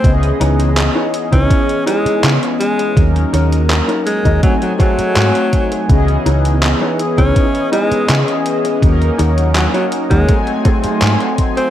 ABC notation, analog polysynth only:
X:1
M:4/4
L:1/8
Q:1/4=82
K:C#dor
V:1 name="Analog polysynth"
[E,B,CGd]8 | [F,A,CDA]4 [F,=A,^B,Dg]4 | [E,B,CGd]8 | [F,A,CDA]4 [F,=A,^B,Dg]4 |]